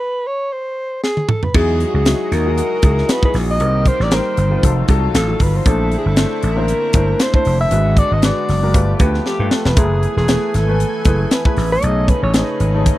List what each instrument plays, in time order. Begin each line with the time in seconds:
Already playing: alto saxophone B4
0.27 alto saxophone C#5
0.53 alto saxophone C5
1.03 alto saxophone G#4, snare
1.17 high tom
1.29 alto saxophone A4, mid tom
1.43 alto saxophone B4, floor tom
1.54 slap bass E2, analog synth pad F#3 G#3 F#4 D#5, grand piano F#3 D#4 E4 G#4, alto saxophone G#4, kick, crash
1.80 closed hi-hat
1.94 slap bass C#2, alto saxophone G#4
2.06 grand piano F#3 D#4 E4 G#4, snare, closed hi-hat
2.32 slap bass D#2, alto saxophone A#4, snare, closed hi-hat
2.45 grand piano F#3 D#4 E4 G#4
2.58 closed hi-hat
2.82 slap bass C#2, grand piano F#3 D#4 E4 G#4, kick, closed hi-hat
2.98 snare
3.09 alto saxophone B4, snare, closed hi-hat
3.22 grand piano F#3 D#4 E4 G#4, alto saxophone B4, kick
3.34 slap bass A#1, snare, open hi-hat
3.51 alto saxophone D#5
3.59 slap bass C2, analog synth pad D#3 A#3 C4 G4, grand piano G3 C4 D#4 A#4, closed hi-hat
3.85 alto saxophone C5, kick, closed hi-hat
4.00 slap bass A1, alto saxophone D5, snare
4.11 grand piano G3 C4 D#4 A#4, alto saxophone C5, snare, closed hi-hat
4.37 slap bass G1, closed hi-hat
4.51 grand piano G3 C4 D#4 F4
4.62 slap bass F1, grand piano F#3 D#4 F4 A4, analog synth pad F#3 F4, kick, closed hi-hat
4.88 slap bass C2, grand piano F#3 D#4 F4 A4, kick, closed hi-hat
5.14 slap bass A1, alto saxophone A4, snare, closed hi-hat
5.28 grand piano F#3 D#4 F4 A4
5.40 slap bass G1, alto saxophone B4, kick, open hi-hat
5.56 alto saxophone C5
5.66 slap bass A#1, analog synth pad D3 C4 E4, grand piano A3 D4 E4 C5, alto saxophone A4, kick, closed hi-hat
5.92 closed hi-hat
5.98 alto saxophone G#4
6.06 slap bass G1, alto saxophone A4
6.16 grand piano A3 D4 E4 C5, snare, closed hi-hat
6.43 slap bass A1, alto saxophone A#4, closed hi-hat
6.56 grand piano A#3 D4 E4 C5
6.68 closed hi-hat
6.93 slap bass G1, grand piano A3 D4 E4 C5, kick, closed hi-hat
7.20 alto saxophone C5, snare, closed hi-hat
7.34 grand piano A3 D4 E4 C5, alto saxophone C5, kick
7.45 slap bass F1, open hi-hat
7.61 alto saxophone E5
7.70 slap bass G#1, analog synth pad D3 G#3 B3 F#4, grand piano G#3 D4 F#4 B4, closed hi-hat
7.97 alto saxophone D5, kick, closed hi-hat
8.11 slap bass G#1, alto saxophone D#5
8.22 grand piano G#3 D4 F#4 B4, alto saxophone D5, snare, closed hi-hat
8.49 slap bass F#1, snare, open hi-hat
8.62 grand piano G#3 D4 F#4 A#4
8.73 slap bass G1, analog synth pad F3 A3 G4, grand piano A3 F4 G4 B4, kick, closed hi-hat
8.99 slap bass D2, grand piano A3 F4 G4 B4, kick, closed hi-hat
9.14 snare
9.26 alto saxophone G4, snare
9.39 slap bass G2, grand piano A3 F4 G4 B4
9.51 alto saxophone A4, snare
9.65 slap bass E1, alto saxophone B4, snare
9.75 slap bass F#1, analog synth pad E3 G#5, grand piano A3 E4 G#4 B4, alto saxophone G#4, kick, closed hi-hat
10.03 closed hi-hat
10.17 slap bass E1, alto saxophone G#4, snare
10.27 grand piano A3 E4 G#4 B4, snare, closed hi-hat
10.54 slap bass G#1, alto saxophone A4, snare, closed hi-hat
10.68 grand piano A3 E4 B4 G#5
10.80 closed hi-hat
11.05 slap bass F#1, grand piano A3 E4 G#4 B4, kick, closed hi-hat
11.31 alto saxophone B4, snare, closed hi-hat
11.44 grand piano A3 E4 G#4 B4, alto saxophone B4, kick
11.57 slap bass A1, snare, open hi-hat
11.72 alto saxophone D#5
11.82 slap bass B1, analog synth pad C#3 D#4 G#4, grand piano A3 D#4 G#4 C#5, closed hi-hat
12.08 alto saxophone B4, kick, closed hi-hat
12.23 slap bass A1, alto saxophone C#5
12.34 grand piano A3 D#4 G#4 C#5, alto saxophone B4, snare, closed hi-hat
12.60 slap bass G#1, closed hi-hat
12.74 grand piano A3 D#4 G#4 C#5
12.86 kick, closed hi-hat